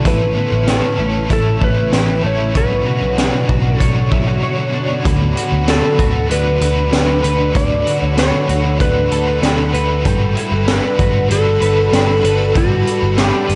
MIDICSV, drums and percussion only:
0, 0, Header, 1, 2, 480
1, 0, Start_track
1, 0, Tempo, 625000
1, 41, Time_signature, 4, 2, 24, 8
1, 10408, End_track
2, 0, Start_track
2, 0, Title_t, "Drums"
2, 40, Note_on_c, 9, 36, 105
2, 41, Note_on_c, 9, 42, 71
2, 117, Note_off_c, 9, 36, 0
2, 118, Note_off_c, 9, 42, 0
2, 518, Note_on_c, 9, 42, 67
2, 519, Note_on_c, 9, 38, 94
2, 595, Note_off_c, 9, 42, 0
2, 596, Note_off_c, 9, 38, 0
2, 999, Note_on_c, 9, 42, 77
2, 1000, Note_on_c, 9, 36, 92
2, 1076, Note_off_c, 9, 42, 0
2, 1077, Note_off_c, 9, 36, 0
2, 1241, Note_on_c, 9, 36, 84
2, 1317, Note_off_c, 9, 36, 0
2, 1480, Note_on_c, 9, 38, 99
2, 1482, Note_on_c, 9, 42, 77
2, 1556, Note_off_c, 9, 38, 0
2, 1559, Note_off_c, 9, 42, 0
2, 1961, Note_on_c, 9, 36, 107
2, 1961, Note_on_c, 9, 42, 71
2, 2037, Note_off_c, 9, 36, 0
2, 2038, Note_off_c, 9, 42, 0
2, 2441, Note_on_c, 9, 42, 68
2, 2442, Note_on_c, 9, 38, 97
2, 2518, Note_off_c, 9, 42, 0
2, 2519, Note_off_c, 9, 38, 0
2, 2682, Note_on_c, 9, 36, 96
2, 2758, Note_off_c, 9, 36, 0
2, 2922, Note_on_c, 9, 36, 85
2, 2923, Note_on_c, 9, 42, 77
2, 2999, Note_off_c, 9, 36, 0
2, 3000, Note_off_c, 9, 42, 0
2, 3162, Note_on_c, 9, 36, 87
2, 3239, Note_off_c, 9, 36, 0
2, 3881, Note_on_c, 9, 36, 113
2, 3884, Note_on_c, 9, 42, 75
2, 3958, Note_off_c, 9, 36, 0
2, 3960, Note_off_c, 9, 42, 0
2, 4124, Note_on_c, 9, 42, 58
2, 4200, Note_off_c, 9, 42, 0
2, 4360, Note_on_c, 9, 42, 71
2, 4360, Note_on_c, 9, 54, 61
2, 4361, Note_on_c, 9, 38, 105
2, 4437, Note_off_c, 9, 38, 0
2, 4437, Note_off_c, 9, 42, 0
2, 4437, Note_off_c, 9, 54, 0
2, 4600, Note_on_c, 9, 36, 100
2, 4603, Note_on_c, 9, 42, 48
2, 4677, Note_off_c, 9, 36, 0
2, 4680, Note_off_c, 9, 42, 0
2, 4843, Note_on_c, 9, 42, 80
2, 4920, Note_off_c, 9, 42, 0
2, 5080, Note_on_c, 9, 42, 47
2, 5156, Note_off_c, 9, 42, 0
2, 5319, Note_on_c, 9, 38, 105
2, 5321, Note_on_c, 9, 54, 67
2, 5322, Note_on_c, 9, 42, 73
2, 5396, Note_off_c, 9, 38, 0
2, 5398, Note_off_c, 9, 54, 0
2, 5399, Note_off_c, 9, 42, 0
2, 5560, Note_on_c, 9, 42, 50
2, 5637, Note_off_c, 9, 42, 0
2, 5799, Note_on_c, 9, 36, 100
2, 5800, Note_on_c, 9, 42, 72
2, 5876, Note_off_c, 9, 36, 0
2, 5877, Note_off_c, 9, 42, 0
2, 6043, Note_on_c, 9, 42, 56
2, 6119, Note_off_c, 9, 42, 0
2, 6279, Note_on_c, 9, 42, 69
2, 6279, Note_on_c, 9, 54, 62
2, 6280, Note_on_c, 9, 38, 100
2, 6356, Note_off_c, 9, 38, 0
2, 6356, Note_off_c, 9, 42, 0
2, 6356, Note_off_c, 9, 54, 0
2, 6522, Note_on_c, 9, 42, 51
2, 6598, Note_off_c, 9, 42, 0
2, 6760, Note_on_c, 9, 36, 93
2, 6762, Note_on_c, 9, 42, 78
2, 6837, Note_off_c, 9, 36, 0
2, 6839, Note_off_c, 9, 42, 0
2, 7000, Note_on_c, 9, 42, 49
2, 7077, Note_off_c, 9, 42, 0
2, 7242, Note_on_c, 9, 38, 102
2, 7243, Note_on_c, 9, 54, 67
2, 7244, Note_on_c, 9, 42, 73
2, 7319, Note_off_c, 9, 38, 0
2, 7320, Note_off_c, 9, 54, 0
2, 7321, Note_off_c, 9, 42, 0
2, 7483, Note_on_c, 9, 42, 50
2, 7559, Note_off_c, 9, 42, 0
2, 7721, Note_on_c, 9, 36, 108
2, 7722, Note_on_c, 9, 42, 73
2, 7798, Note_off_c, 9, 36, 0
2, 7799, Note_off_c, 9, 42, 0
2, 7962, Note_on_c, 9, 42, 60
2, 8039, Note_off_c, 9, 42, 0
2, 8201, Note_on_c, 9, 38, 107
2, 8201, Note_on_c, 9, 42, 75
2, 8201, Note_on_c, 9, 54, 62
2, 8278, Note_off_c, 9, 38, 0
2, 8278, Note_off_c, 9, 42, 0
2, 8278, Note_off_c, 9, 54, 0
2, 8442, Note_on_c, 9, 36, 107
2, 8445, Note_on_c, 9, 42, 47
2, 8518, Note_off_c, 9, 36, 0
2, 8521, Note_off_c, 9, 42, 0
2, 8683, Note_on_c, 9, 42, 80
2, 8760, Note_off_c, 9, 42, 0
2, 8921, Note_on_c, 9, 42, 48
2, 8998, Note_off_c, 9, 42, 0
2, 9163, Note_on_c, 9, 38, 102
2, 9165, Note_on_c, 9, 54, 63
2, 9166, Note_on_c, 9, 42, 80
2, 9240, Note_off_c, 9, 38, 0
2, 9242, Note_off_c, 9, 54, 0
2, 9243, Note_off_c, 9, 42, 0
2, 9403, Note_on_c, 9, 42, 50
2, 9480, Note_off_c, 9, 42, 0
2, 9642, Note_on_c, 9, 36, 111
2, 9643, Note_on_c, 9, 42, 74
2, 9719, Note_off_c, 9, 36, 0
2, 9720, Note_off_c, 9, 42, 0
2, 9886, Note_on_c, 9, 42, 61
2, 9963, Note_off_c, 9, 42, 0
2, 10121, Note_on_c, 9, 38, 106
2, 10121, Note_on_c, 9, 42, 70
2, 10121, Note_on_c, 9, 54, 59
2, 10197, Note_off_c, 9, 42, 0
2, 10198, Note_off_c, 9, 38, 0
2, 10198, Note_off_c, 9, 54, 0
2, 10363, Note_on_c, 9, 42, 49
2, 10408, Note_off_c, 9, 42, 0
2, 10408, End_track
0, 0, End_of_file